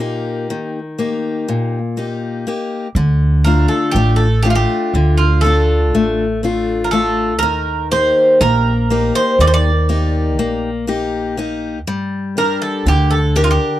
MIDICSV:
0, 0, Header, 1, 4, 480
1, 0, Start_track
1, 0, Tempo, 991736
1, 1434, Time_signature, 9, 3, 24, 8
1, 6678, End_track
2, 0, Start_track
2, 0, Title_t, "Bouzouki"
2, 0, Program_c, 0, 25
2, 0, Note_on_c, 0, 74, 79
2, 931, Note_off_c, 0, 74, 0
2, 1667, Note_on_c, 0, 70, 74
2, 1781, Note_off_c, 0, 70, 0
2, 1783, Note_on_c, 0, 69, 63
2, 1895, Note_on_c, 0, 67, 84
2, 1912, Note_off_c, 0, 69, 0
2, 2014, Note_on_c, 0, 69, 71
2, 2028, Note_off_c, 0, 67, 0
2, 2135, Note_off_c, 0, 69, 0
2, 2142, Note_on_c, 0, 67, 79
2, 2177, Note_off_c, 0, 67, 0
2, 2179, Note_on_c, 0, 65, 66
2, 2202, Note_off_c, 0, 65, 0
2, 2204, Note_on_c, 0, 67, 79
2, 2503, Note_off_c, 0, 67, 0
2, 2505, Note_on_c, 0, 65, 71
2, 2619, Note_on_c, 0, 69, 82
2, 2632, Note_off_c, 0, 65, 0
2, 3310, Note_off_c, 0, 69, 0
2, 3312, Note_on_c, 0, 70, 63
2, 3343, Note_off_c, 0, 70, 0
2, 3345, Note_on_c, 0, 69, 79
2, 3573, Note_off_c, 0, 69, 0
2, 3575, Note_on_c, 0, 70, 89
2, 3805, Note_off_c, 0, 70, 0
2, 3831, Note_on_c, 0, 72, 86
2, 4054, Note_off_c, 0, 72, 0
2, 4069, Note_on_c, 0, 70, 95
2, 4410, Note_off_c, 0, 70, 0
2, 4430, Note_on_c, 0, 72, 92
2, 4542, Note_off_c, 0, 72, 0
2, 4554, Note_on_c, 0, 74, 92
2, 4583, Note_off_c, 0, 74, 0
2, 4585, Note_on_c, 0, 72, 76
2, 4614, Note_off_c, 0, 72, 0
2, 4616, Note_on_c, 0, 74, 93
2, 5250, Note_off_c, 0, 74, 0
2, 5991, Note_on_c, 0, 70, 78
2, 6103, Note_off_c, 0, 70, 0
2, 6106, Note_on_c, 0, 69, 70
2, 6221, Note_off_c, 0, 69, 0
2, 6235, Note_on_c, 0, 67, 86
2, 6343, Note_on_c, 0, 69, 76
2, 6357, Note_off_c, 0, 67, 0
2, 6460, Note_off_c, 0, 69, 0
2, 6467, Note_on_c, 0, 67, 88
2, 6502, Note_off_c, 0, 67, 0
2, 6504, Note_on_c, 0, 65, 75
2, 6535, Note_off_c, 0, 65, 0
2, 6537, Note_on_c, 0, 67, 80
2, 6678, Note_off_c, 0, 67, 0
2, 6678, End_track
3, 0, Start_track
3, 0, Title_t, "Steel-string acoustic guitar"
3, 0, Program_c, 1, 25
3, 0, Note_on_c, 1, 46, 62
3, 0, Note_on_c, 1, 58, 41
3, 0, Note_on_c, 1, 63, 39
3, 2, Note_on_c, 1, 67, 40
3, 222, Note_off_c, 1, 46, 0
3, 243, Note_on_c, 1, 51, 62
3, 380, Note_off_c, 1, 58, 0
3, 382, Note_off_c, 1, 63, 0
3, 382, Note_off_c, 1, 67, 0
3, 477, Note_on_c, 1, 58, 41
3, 481, Note_on_c, 1, 67, 45
3, 482, Note_on_c, 1, 63, 34
3, 704, Note_off_c, 1, 51, 0
3, 719, Note_on_c, 1, 46, 59
3, 861, Note_off_c, 1, 58, 0
3, 861, Note_off_c, 1, 63, 0
3, 862, Note_off_c, 1, 67, 0
3, 954, Note_on_c, 1, 58, 40
3, 957, Note_on_c, 1, 63, 39
3, 961, Note_on_c, 1, 67, 39
3, 1182, Note_off_c, 1, 46, 0
3, 1189, Note_off_c, 1, 58, 0
3, 1191, Note_off_c, 1, 63, 0
3, 1194, Note_off_c, 1, 67, 0
3, 1194, Note_on_c, 1, 58, 40
3, 1198, Note_on_c, 1, 63, 35
3, 1200, Note_on_c, 1, 67, 41
3, 1387, Note_off_c, 1, 58, 0
3, 1387, Note_off_c, 1, 63, 0
3, 1389, Note_off_c, 1, 67, 0
3, 1434, Note_on_c, 1, 50, 67
3, 1675, Note_on_c, 1, 57, 46
3, 1677, Note_on_c, 1, 62, 42
3, 1680, Note_on_c, 1, 65, 47
3, 1899, Note_off_c, 1, 50, 0
3, 1909, Note_off_c, 1, 57, 0
3, 1915, Note_on_c, 1, 57, 62
3, 2059, Note_off_c, 1, 62, 0
3, 2061, Note_off_c, 1, 65, 0
3, 2146, Note_off_c, 1, 57, 0
3, 2152, Note_on_c, 1, 57, 49
3, 2153, Note_on_c, 1, 62, 44
3, 2158, Note_on_c, 1, 65, 46
3, 2395, Note_on_c, 1, 50, 64
3, 2536, Note_off_c, 1, 57, 0
3, 2537, Note_off_c, 1, 62, 0
3, 2538, Note_off_c, 1, 65, 0
3, 2635, Note_on_c, 1, 57, 41
3, 2638, Note_on_c, 1, 62, 40
3, 2643, Note_on_c, 1, 65, 44
3, 2859, Note_off_c, 1, 50, 0
3, 2872, Note_off_c, 1, 57, 0
3, 2878, Note_on_c, 1, 57, 64
3, 3020, Note_off_c, 1, 62, 0
3, 3021, Note_off_c, 1, 65, 0
3, 3106, Note_off_c, 1, 57, 0
3, 3112, Note_on_c, 1, 57, 45
3, 3116, Note_on_c, 1, 62, 40
3, 3120, Note_on_c, 1, 65, 51
3, 3348, Note_off_c, 1, 57, 0
3, 3348, Note_off_c, 1, 62, 0
3, 3353, Note_on_c, 1, 57, 47
3, 3354, Note_off_c, 1, 65, 0
3, 3355, Note_on_c, 1, 62, 35
3, 3360, Note_on_c, 1, 65, 46
3, 3544, Note_off_c, 1, 62, 0
3, 3545, Note_off_c, 1, 57, 0
3, 3548, Note_off_c, 1, 65, 0
3, 3594, Note_on_c, 1, 51, 70
3, 3831, Note_on_c, 1, 58, 46
3, 3835, Note_on_c, 1, 67, 46
3, 3836, Note_on_c, 1, 63, 38
3, 4058, Note_off_c, 1, 51, 0
3, 4067, Note_off_c, 1, 58, 0
3, 4073, Note_on_c, 1, 58, 69
3, 4216, Note_off_c, 1, 63, 0
3, 4217, Note_off_c, 1, 67, 0
3, 4304, Note_off_c, 1, 58, 0
3, 4309, Note_on_c, 1, 58, 52
3, 4313, Note_on_c, 1, 63, 46
3, 4316, Note_on_c, 1, 67, 52
3, 4551, Note_on_c, 1, 51, 64
3, 4694, Note_off_c, 1, 58, 0
3, 4696, Note_off_c, 1, 63, 0
3, 4697, Note_off_c, 1, 67, 0
3, 4787, Note_on_c, 1, 58, 45
3, 4789, Note_on_c, 1, 67, 48
3, 4791, Note_on_c, 1, 63, 43
3, 5016, Note_off_c, 1, 51, 0
3, 5022, Note_off_c, 1, 58, 0
3, 5028, Note_on_c, 1, 58, 66
3, 5174, Note_off_c, 1, 67, 0
3, 5175, Note_off_c, 1, 63, 0
3, 5257, Note_off_c, 1, 58, 0
3, 5263, Note_on_c, 1, 58, 47
3, 5267, Note_on_c, 1, 63, 43
3, 5269, Note_on_c, 1, 67, 53
3, 5499, Note_off_c, 1, 58, 0
3, 5503, Note_off_c, 1, 63, 0
3, 5505, Note_on_c, 1, 58, 44
3, 5506, Note_off_c, 1, 67, 0
3, 5509, Note_on_c, 1, 63, 43
3, 5511, Note_on_c, 1, 67, 54
3, 5700, Note_off_c, 1, 58, 0
3, 5702, Note_off_c, 1, 63, 0
3, 5703, Note_off_c, 1, 67, 0
3, 5747, Note_on_c, 1, 55, 75
3, 5986, Note_on_c, 1, 67, 39
3, 5990, Note_on_c, 1, 62, 47
3, 5991, Note_on_c, 1, 70, 43
3, 6216, Note_off_c, 1, 55, 0
3, 6227, Note_on_c, 1, 50, 65
3, 6375, Note_off_c, 1, 67, 0
3, 6376, Note_off_c, 1, 62, 0
3, 6376, Note_off_c, 1, 70, 0
3, 6464, Note_on_c, 1, 62, 51
3, 6468, Note_on_c, 1, 67, 41
3, 6469, Note_on_c, 1, 70, 51
3, 6678, Note_off_c, 1, 50, 0
3, 6678, Note_off_c, 1, 62, 0
3, 6678, Note_off_c, 1, 67, 0
3, 6678, Note_off_c, 1, 70, 0
3, 6678, End_track
4, 0, Start_track
4, 0, Title_t, "Upright bass"
4, 0, Program_c, 2, 32
4, 1427, Note_on_c, 2, 38, 94
4, 1765, Note_off_c, 2, 38, 0
4, 1909, Note_on_c, 2, 33, 82
4, 2246, Note_off_c, 2, 33, 0
4, 2389, Note_on_c, 2, 38, 83
4, 2865, Note_off_c, 2, 38, 0
4, 2865, Note_on_c, 2, 33, 97
4, 3583, Note_off_c, 2, 33, 0
4, 3583, Note_on_c, 2, 39, 89
4, 3921, Note_off_c, 2, 39, 0
4, 4068, Note_on_c, 2, 34, 87
4, 4405, Note_off_c, 2, 34, 0
4, 4543, Note_on_c, 2, 39, 82
4, 5022, Note_off_c, 2, 39, 0
4, 5022, Note_on_c, 2, 34, 93
4, 5744, Note_off_c, 2, 34, 0
4, 5744, Note_on_c, 2, 43, 99
4, 6084, Note_off_c, 2, 43, 0
4, 6223, Note_on_c, 2, 38, 87
4, 6564, Note_off_c, 2, 38, 0
4, 6678, End_track
0, 0, End_of_file